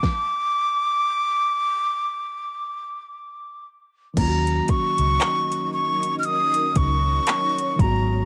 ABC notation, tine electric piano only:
X:1
M:4/4
L:1/8
Q:"Swing 16ths" 1/4=58
K:Ebm
V:1 name="Tine electric piano"
z8 | [E,G,B,DFG]6- [E,G,B,DFG] [E,G,A,CG] |]